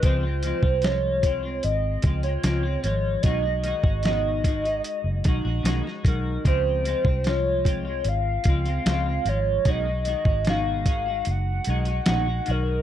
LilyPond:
<<
  \new Staff \with { instrumentName = "Soft synth lead" } { \time 4/4 \key des \major \tempo 4 = 75 c''4 des''4 ees''8. des''8. des''8 | ees''4 ees''2 r8 bes'8 | c''4 des''4 f''8. f''8. des''8 | ees''4 f''4 ges''8. ges''8. bes'8 | }
  \new Staff \with { instrumentName = "Clean electric guitar" } { \time 4/4 \key des \major <des f aes c' f'>16 <aes c' f'>16 <f aes c' f'>16 <aes c' f'>16 <f aes f'>8 <f aes c' f'>16 <aes c' f'>8. <f aes c' f'>16 <aes c' f'>16 <des f aes c' f'>16 <aes c' f'>16 <f aes f'>8 | <ces ees aes ees' ges'>16 <ees' ges'>16 <ees aes ees' ges'>16 <aes ees' ges'>16 <ces ees aes ees' ges'>8 <ees aes ees' ges'>16 <aes ees' ges'>8. <ees aes ees' ges'>16 <aes ees' ges'>16 <ces ees aes ees' ges'>16 <aes ees' ges'>16 <ees aes ees' ges'>8 | <des f aes c' f'>8 <f aes c' f'>16 <aes c' f'>16 <f aes f'>8 <f aes c' f'>16 <aes c' f'>8. <f aes c' f'>16 <aes c' f'>16 <des f aes c' f'>16 <c' f'>16 <f aes f'>8 | <ces ees aes ees' ges'>16 <aes ees' ges'>16 <ees aes ees' ges'>16 <aes ees' ges'>16 <ces ees aes ees' ges'>8 <ees aes ees' ges'>16 <aes ees' ges'>8. <ees aes ees' ges'>16 <aes ees' ges'>16 <ces ees aes ees' ges'>16 <ees' ges'>16 <ees aes ees' ges'>8 | }
  \new Staff \with { instrumentName = "Fingered electric bass" } { \clef bass \time 4/4 \key des \major des,8. c,4~ c,16 aes,,8 des,8 des,8 aes,,8 | ces,8. aes,,4~ aes,,16 r16 ges,,16 ces,16 bes,,16 ces,16 r16 ces,8 | des,8. c,4~ c,16 aes,,8 des,8 des,8 aes,,8 | ces,8. aes,,4~ aes,,16 ges,,8 ces,8 bes,,8 ces,8 | }
  \new DrumStaff \with { instrumentName = "Drums" } \drummode { \time 4/4 <hh bd>8 hh16 bd16 <hh sn>8 <hh bd>8 hh8 <hh bd>16 hh16 <hh sn>8 hh8 | <hh bd>8 hh16 bd16 <hh sn>8 <hh bd>16 hh16 hh8 <hh bd>8 <hh sn>16 sn16 <hh bd>8 | <hh bd>8 hh16 bd16 <hh sn>8 <hh bd>8 hh8 <hh bd>16 hh16 <hh sn>8 hh8 | <hh bd>8 hh16 bd16 <hh sn>8 <hh bd>8 hh8 hh16 hh16 <hh sn>8 hh8 | }
>>